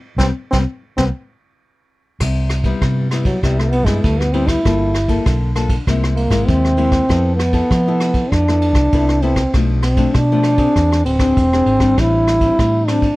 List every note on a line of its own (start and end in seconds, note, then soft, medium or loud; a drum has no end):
0.17 0.30 C2 medium
0.17 0.29 G3 medium
0.17 0.30 B3 medium
0.17 0.26 C4 medium
0.17 0.30 C4 medium
0.17 kick medium
0.17 snare medium
0.51 0.64 C2 medium
0.51 0.62 G3 medium
0.51 0.62 B3 medium
0.51 0.58 C4 medium
0.51 0.62 C4 medium
0.51 kick medium
0.51 snare medium
0.97 1.09 C2 medium
0.97 1.08 G3 medium
0.97 1.08 B3 medium
0.97 1.05 C4 medium
0.97 1.08 C4 medium
0.97 kick medium
0.97 snare medium
2.20 2.72 C2 loud
2.20 2.79 C3 medium
2.20 kick medium
2.20 cross-stick medium
2.20 crash medium
2.49 cross-stick medium
2.49 ride medium
2.64 3.07 G3 medium
2.64 3.07 B3 medium
2.64 3.07 E4 medium
2.64 kick medium
2.64 ride soft
2.82 3.40 G2 medium
2.82 3.34 C3 medium
2.82 kick medium
2.82 cross-stick medium
2.82 ride soft
3.11 3.38 G3 soft
3.11 3.38 B3 medium
3.11 3.38 E4 medium
3.11 cross-stick medium
3.11 ride medium
3.24 3.44 F#3 medium
3.24 kick medium
3.24 ride soft
3.42 3.82 C2 loud
3.42 4.01 C3 medium
3.42 3.61 G3 medium
3.42 3.84 G3 medium
3.42 3.84 B3 medium
3.42 3.85 E4 medium
3.42 kick medium
3.42 cross-stick medium
3.42 ride soft
3.59 3.72 A3 medium
3.59 cross-stick medium
3.71 3.86 B3 loud
3.71 ride soft
3.84 3.99 G2 medium
3.84 4.29 G3 medium
3.84 4.05 G#3 medium
3.84 4.29 B3 medium
3.84 4.29 E4 medium
3.84 kick medium
3.84 cross-stick medium
3.84 ride medium
4.04 4.56 D2 medium
4.04 4.62 G2 medium
4.04 4.22 A3 medium
4.04 kick medium
4.04 ride medium
4.20 4.34 B3 medium
4.20 cross-stick medium
4.33 4.60 G3 medium
4.33 4.60 B3 medium
4.33 4.49 C4 medium
4.33 4.60 E4 medium
4.33 ride soft
4.47 5.40 E4 medium
4.47 kick medium
4.47 cross-stick medium
4.47 ride soft
4.65 5.17 G1 loud
4.65 5.23 G3 medium
4.65 4.94 A#3 medium
4.65 4.94 F4 medium
4.65 4.94 A4 medium
4.65 kick medium
4.65 cross-stick medium
4.65 ride soft
4.94 cross-stick medium
4.94 ride medium
5.08 5.51 A#3 medium
5.08 5.51 A4 medium
5.08 kick medium
5.08 ride soft
5.26 5.78 B1 medium
5.26 5.84 D3 medium
5.26 kick medium
5.26 cross-stick medium
5.26 ride medium
5.55 5.74 A#3 medium
5.55 5.74 F4 medium
5.55 5.74 A4 medium
5.55 cross-stick medium
5.55 ride medium
5.70 kick medium
5.70 ride medium
5.87 6.26 C2 loud
5.87 6.46 C3 medium
5.87 6.28 G#3 medium
5.87 6.29 A#3 medium
5.87 6.29 E4 medium
5.87 kick medium
5.87 cross-stick medium
5.87 ride soft
6.04 cross-stick medium
6.16 6.49 A#3 medium
6.16 ride soft
6.28 6.43 G#1 medium
6.28 6.73 G#3 medium
6.28 6.73 A#3 medium
6.28 6.73 E4 medium
6.28 kick medium
6.28 cross-stick medium
6.28 ride soft
6.47 7.00 D#2 medium
6.47 7.06 C3 medium
6.47 7.36 C4 loud
6.47 kick loud
6.47 ride soft
6.65 cross-stick medium
6.77 7.04 G#3 medium
6.77 7.04 A#3 medium
6.77 7.04 E4 medium
6.77 ride soft
6.92 kick medium
6.92 cross-stick medium
6.92 ride soft
7.09 7.61 F2 loud
7.09 7.67 F3 medium
7.09 7.38 B3 medium
7.09 7.38 E4 medium
7.09 7.38 A4 medium
7.09 kick medium
7.09 cross-stick medium
7.09 ride soft
7.37 8.33 B3 medium
7.37 cross-stick medium
7.37 ride soft
7.53 7.80 B3 medium
7.53 7.80 E4 medium
7.53 7.80 A4 medium
7.53 kick medium
7.53 ride soft
7.71 8.29 C3 medium
7.71 8.23 F3 medium
7.71 kick medium
7.71 cross-stick medium
7.71 ride soft
7.88 8.43 B3 medium
7.88 8.43 E4 medium
7.88 8.43 A4 medium
8.00 cross-stick medium
8.00 ride soft
8.14 kick medium
8.14 ride soft
8.31 8.71 F2 loud
8.31 8.90 F3 medium
8.31 9.23 D4 medium
8.31 kick medium
8.31 cross-stick medium
8.31 ride soft
8.48 8.89 B3 medium
8.48 8.89 E4 medium
8.48 8.89 A4 medium
8.48 cross-stick medium
8.62 ride medium
8.72 8.87 C2 medium
8.72 kick medium
8.72 cross-stick medium
8.72 ride soft
8.92 9.45 C2 medium
8.92 9.51 C3 medium
8.92 9.19 B3 medium
8.92 9.19 E4 medium
8.92 9.19 A4 medium
8.92 kick medium
8.92 ride medium
9.09 cross-stick medium
9.22 9.41 B3 medium
9.22 9.53 C4 medium
9.22 9.41 E4 medium
9.22 9.41 A4 medium
9.22 ride soft
9.36 kick medium
9.36 cross-stick medium
9.36 ride soft
9.54 10.06 B1 loud
9.54 10.12 B2 medium
9.54 9.83 F3 medium
9.54 9.83 A3 medium
9.54 9.83 D4 medium
9.54 kick medium
9.54 cross-stick medium
9.54 ride soft
9.83 10.17 C4 medium
9.83 cross-stick medium
9.83 ride medium
9.97 10.24 F3 medium
9.97 10.24 A3 medium
9.97 10.24 D4 medium
9.97 kick medium
9.97 ride soft
10.14 10.67 B2 medium
10.14 10.73 B2 medium
10.14 11.05 D4 loud
10.14 kick medium
10.14 cross-stick medium
10.14 ride soft
10.32 10.57 F3 medium
10.32 10.57 A3 medium
10.32 10.57 D4 medium
10.43 cross-stick medium
10.43 ride medium
10.58 11.15 C4 medium
10.58 11.15 D4 medium
10.58 11.16 G#4 medium
10.58 kick medium
10.58 ride medium
10.76 11.02 E2 loud
10.76 11.34 E3 medium
10.76 kick medium
10.76 cross-stick medium
10.76 ride soft
10.92 cross-stick medium
11.05 11.33 D1 medium
11.05 12.01 C4 loud
11.05 ride medium
11.19 11.46 C4 medium
11.19 11.46 D4 medium
11.19 11.47 G#4 medium
11.19 kick medium
11.19 cross-stick medium
11.19 ride medium
11.37 11.64 E1 medium
11.37 kick medium
11.37 ride medium
11.53 11.78 C4 medium
11.53 11.78 D4 medium
11.53 11.79 G#4 medium
11.53 cross-stick medium
11.66 11.94 G#1 medium
11.66 ride soft
11.80 12.38 G3 medium
11.80 12.38 C4 medium
11.80 12.38 D4 medium
11.80 kick medium
11.80 cross-stick medium
11.80 ride soft
11.98 12.50 A1 loud
11.98 12.56 A2 medium
11.98 12.89 E4 loud
11.98 kick medium
11.98 cross-stick medium
11.98 ride soft
12.27 cross-stick medium
12.27 ride soft
12.41 12.84 G3 medium
12.41 12.84 C4 medium
12.41 12.84 D4 medium
12.41 kick medium
12.41 ride soft
12.59 13.11 A2 medium
12.59 13.16 E3 medium
12.59 kick medium
12.59 cross-stick medium
12.59 ride soft
12.87 13.07 G3 medium
12.87 13.07 C4 medium
12.87 13.16 D4 medium
12.87 13.07 D4 medium
12.87 cross-stick medium
12.87 ride medium
13.02 kick medium
13.02 ride soft